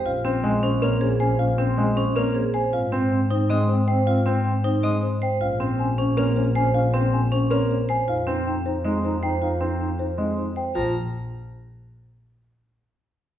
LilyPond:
<<
  \new Staff \with { instrumentName = "Violin" } { \time 7/8 \key bes \dorian \tempo 4 = 157 r2 f'''8 r4 | r2 f'''8 r4 | r2 ees'''8 r4 | r2 ees'''8 r4 |
r2 f'''8 r4 | r2 f'''8 r4 | r2. r8 | r2. r8 |
bes''8 r2. | r2. r8 | }
  \new Staff \with { instrumentName = "Marimba" } { \time 7/8 \key bes \dorian f''8 c''8 aes''8 c''8 des''8 c''8 aes''8 | f''8 c''8 aes''8 c''8 des''8 c''8 aes''8 | f''8 c''8 g''8 c''8 ees''8 c''8 g''8 | f''8 c''8 g''8 c''8 ees''8 c''8 g''8 |
f''8 c''8 aes''8 c''8 des''8 c''8 aes''8 | f''8 c''8 aes''8 c''8 des''8 c''8 aes''8 | f''8 r8 g''8 c''8 ees''8 c''8 g''8 | f''8 r8 g''8 c''8 ees''8 c''8 g''8 |
c''8 r2. | r2. r8 | }
  \new Staff \with { instrumentName = "Vibraphone" } { \time 7/8 \key bes \dorian f'8 c'8 r8 des'8 c'8 aes'8 c''8 | f'8 c'8 r8 des'8 c'8 aes'8 c''8 | f'8 c'8 r8 ees'8 c'8 r8 c''8 | f'8 c'8 r8 ees'8 c'8 r8 c''8 |
f'8 c'8 r8 des'8 c'8 r8 c''8 | f'8 c'8 r8 des'8 c'8 r8 c''8 | f'8 c'8 r4 c'8 r8 c''8 | f'8 c'8 r4 c'8 r8 c''8 |
f'8 r2. | r2. r8 | }
  \new Staff \with { instrumentName = "Clarinet" } { \time 7/8 \key bes \dorian des'8 des'8 des'8 des'8 des'8 des'8 des'8 | des'8 des'8 des'8 des'8 des'8 des'8 r8 | c'8 c'8 c'8 c'8 c'8 c'8 c'8 | c'8 c'8 c'8 c'8 c'8 c'8 r8 |
des'8 des'8 des'8 des'8 des'8 des'8 des'8 | des'8 des'8 des'8 des'8 des'8 des'8 r8 | ees'8 ees'8 ees'8 ees'8 ees'8 ees'8 ees'8 | ees'8 ees'8 ees'8 ees'8 ees'8 ees'8 r8 |
r2. r8 | r2. r8 | }
  \new Staff \with { instrumentName = "Grand piano" } { \time 7/8 \key bes \dorian r8 c'8 aes8 r8 bes8 r4 | r8 c'8 aes8 r8 bes8 r4 | r8 c'8 r4 aes8 r4 | r8 c'8 r4 aes8 r4 |
r8 c'8 r4 bes8 r4 | r8 c'8 r4 bes8 r4 | r8 c'8 r4 aes8 r4 | r8 c'8 r4 aes8 r4 |
f8 r2. | r2. r8 | }
  \new Staff \with { instrumentName = "Double bass" } { \clef bass \time 7/8 \key bes \dorian bes,,2.~ bes,,8~ | bes,,2.~ bes,,8 | aes,2.~ aes,8~ | aes,2.~ aes,8 |
bes,,2.~ bes,,8~ | bes,,2.~ bes,,8 | f,2.~ f,8~ | f,2.~ f,8 |
bes,,8 r2. | r2. r8 | }
>>